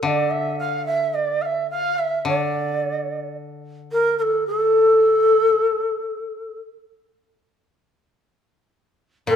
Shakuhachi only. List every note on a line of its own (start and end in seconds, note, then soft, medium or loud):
0.03 0.08 E5 medium
0.07 0.32 D5 medium
0.30 0.59 E5 medium
0.59 0.85 F5 medium
0.86 1.16 E5 medium
1.14 1.43 D5 medium
1.41 1.70 E5 medium
1.41 1.46 F5 medium
1.70 2.00 F5 medium
1.98 2.27 E5 medium
2.27 3.33 D5 medium
3.92 4.17 A#4 medium
4.18 4.44 A4 medium
4.18 4.23 A#4 medium
4.47 6.59 A4 loud
9.28 9.36 A#4 loud